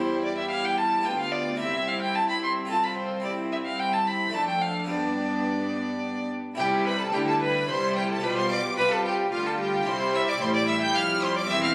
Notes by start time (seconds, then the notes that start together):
Already playing: E2 G3 E4 G4 C5
0.25 D5
0.38 E5
0.51 F5
0.65 G5
0.77 A5
1.02 B3 F4 G4 G5
1.06 D2 B3 F4
1.20 F5
1.32 D5
1.56 C4 E4 G4 E5
1.60 C2 C4 E4 G4
1.88 F5
2.02 G5
2.15 A5
2.29 B5
2.44 C6
2.65 C4 F4 A4
2.70 F4 A5
2.83 B5
2.98 C5
3.20 C4 E4 G4
3.24 G4 D5
3.52 E5
3.65 F5
3.80 G5
3.93 A5
4.07 B5
4.29 A3 D4 A4
4.33 F2 A3 D4 A4 A5
4.48 G5
4.62 F5
4.85 B3 D4 G4
4.89 G2 B3 G4 D5
6.55 C2 C3 G3 E4 G4 G5
6.86 B4 B5
6.99 A4 A5
7.13 D2 D3 G3 E4 G4 G5
7.27 A4 A5
7.41 B4 B5
7.67 C2 C3 G3 E4 C5 C6
7.96 G4 G5
8.10 A4 A5
8.20 B1 B2 G3 F4 G4 B4 B5
8.36 C5 C6
8.50 D5 D6
8.77 C2 C3 G3 F4 B4 B5
8.91 A4 A5
9.05 G4 G5
9.32 D2 D3 G3 F4 F5
9.46 A4 A5
9.60 G4 G5
9.83 C4 E4 G4
9.87 C2 C3 G3 E4 C5 C6
10.15 E5 E6
10.28 D5 D6
10.41 A1 A2 G3 E4 C5 C6
10.55 D5 D6
10.68 E5 E6
10.82 G5 G6
10.95 F1 F2 F5 F6
11.23 C5 C6
11.36 D5 D6
11.46 C4 E4 C5 E5
11.50 E1 E2 C4 E4 E6
11.64 F5 F6